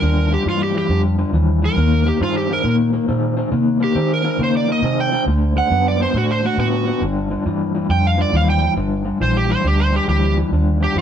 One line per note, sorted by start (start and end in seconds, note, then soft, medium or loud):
0.00 0.35 D#2 medium
0.00 0.28 G2 medium
0.00 0.28 D3 loud
0.00 0.31 A#4 loud
0.31 0.44 G2 medium
0.31 0.44 D3 medium
0.31 0.46 G4 medium
0.46 0.79 G2 medium
0.46 0.71 G2 medium
0.46 0.72 E3 medium
0.46 0.61 F4 medium
0.64 0.76 G4 medium
0.75 0.88 G2 medium
0.75 0.88 E3 medium
0.75 1.00 G4 medium
0.89 1.22 F2 medium
0.89 1.15 G2 medium
0.89 1.15 D3 medium
1.18 1.32 G2 medium
1.18 1.32 D3 medium
1.33 1.66 D#2 medium
1.33 1.59 G2 medium
1.33 1.59 E3 medium
1.62 1.75 G2 medium
1.62 1.76 E3 medium
1.62 2.06 A#4 loud
1.76 2.10 D#2 medium
1.76 2.03 D#3 medium
1.76 2.03 A#3 medium
2.05 2.19 D#3 medium
2.05 2.19 A#3 medium
2.05 2.21 G4 medium
2.21 2.54 G2 medium
2.21 2.46 D#3 medium
2.21 2.47 C4 medium
2.21 2.36 F4 medium
2.38 2.51 G4 medium
2.50 2.63 D#3 medium
2.50 2.63 C4 medium
2.50 2.75 A#4 medium
2.64 2.97 A#2 medium
2.64 2.90 D#3 medium
2.64 2.90 A#3 medium
2.93 3.06 D#3 medium
2.93 3.07 A#3 medium
3.08 3.42 A#2 medium
3.08 3.34 D#3 medium
3.08 3.34 C4 medium
3.37 3.50 D#3 medium
3.37 3.51 C4 medium
3.52 3.85 C3 medium
3.52 3.78 D#3 medium
3.52 3.78 A#3 medium
3.80 3.94 D#3 medium
3.80 3.94 A#3 medium
3.80 4.11 G4 medium
3.95 4.29 D#3 medium
3.95 4.21 D#3 medium
3.95 4.22 C4 medium
4.14 4.40 A#4 medium
4.24 4.38 D#3 medium
4.24 4.38 C4 medium
4.39 4.72 C#3 medium
4.39 4.65 D#3 medium
4.39 4.65 A#3 medium
4.44 4.56 C5 medium
4.57 4.70 D5 medium
4.68 4.82 D#3 medium
4.68 4.82 A#3 medium
4.72 4.99 D#5 medium
4.82 5.16 C3 medium
4.82 5.09 D#3 medium
4.82 5.09 C4 medium
5.00 5.22 G5 medium
5.12 5.25 D#3 medium
5.12 5.26 C4 medium
5.26 5.60 D2 medium
5.26 5.53 D3 medium
5.26 5.53 A3 medium
5.56 5.69 D3 medium
5.56 5.69 A3 medium
5.56 5.85 F#5 medium
5.70 6.04 F#2 medium
5.70 5.96 D3 medium
5.70 5.97 B3 medium
5.88 6.01 D5 medium
6.00 6.13 D3 medium
6.00 6.13 B3 loud
6.00 6.15 C5 medium
6.14 6.47 A2 medium
6.14 6.40 D3 medium
6.14 6.41 A3 medium
6.14 6.30 F#4 medium
6.31 6.44 C5 medium
6.44 6.57 D3 medium
6.44 6.57 A3 medium
6.44 6.59 F#4 medium
6.57 6.91 A2 loud
6.57 6.84 D3 medium
6.57 6.84 B3 medium
6.57 7.01 F#4 loud
6.87 7.00 D3 medium
6.87 7.01 B3 medium
7.02 7.35 G1 loud
7.02 7.28 G2 medium
7.02 7.28 D3 medium
7.31 7.44 G2 medium
7.31 7.44 D3 medium
7.46 7.79 G2 medium
7.46 7.72 G2 medium
7.46 7.72 E3 medium
7.75 7.88 G2 medium
7.75 7.88 E3 medium
7.89 8.23 F2 medium
7.89 8.15 G2 medium
7.89 8.15 D3 medium
7.89 8.04 G5 loud
8.07 8.20 F5 medium
8.17 8.31 G2 medium
8.17 8.32 D3 medium
8.22 8.34 D5 medium
8.33 8.66 D#2 medium
8.33 8.59 G2 medium
8.33 8.59 E3 medium
8.33 8.49 F5 medium
8.50 8.72 G5 medium
8.62 8.75 G2 medium
8.62 8.75 E3 medium
8.77 9.10 G1 medium
8.77 9.03 G2 medium
8.77 9.03 D3 loud
9.05 9.19 G2 medium
9.05 9.19 D3 medium
9.20 9.54 A#1 medium
9.20 9.46 G2 medium
9.20 9.47 E3 medium
9.20 9.36 C5 medium
9.37 9.50 G4 medium
9.49 9.63 G2 medium
9.49 9.63 E3 medium
9.49 9.65 C5 medium
9.64 9.98 D2 medium
9.64 9.90 G2 medium
9.64 9.91 D3 medium
9.64 9.80 G4 medium
9.80 9.94 C5 medium
9.92 10.06 G2 medium
9.92 10.07 D3 medium
9.92 10.08 G4 medium
10.08 10.41 D2 loud
10.08 10.34 G2 medium
10.08 10.34 E3 medium
10.08 10.37 G4 medium
10.37 10.50 G2 medium
10.37 10.51 E3 medium
10.52 10.85 D#2 medium
10.52 10.78 G2 medium
10.52 10.78 D3 medium
10.81 10.94 G2 medium
10.81 10.95 D3 medium
10.81 10.97 G4 medium
10.95 11.01 G2 medium
10.95 11.01 E3 medium